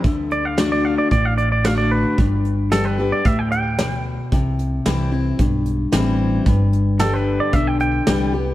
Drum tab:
HH |xxx-xxx-|xxx-xxx-|xxx-xxx-|xxx-xxx-|
SD |--o---o-|--o---o-|--o---o-|--o---o-|
BD |o---o---|o---o---|o---o---|o---o---|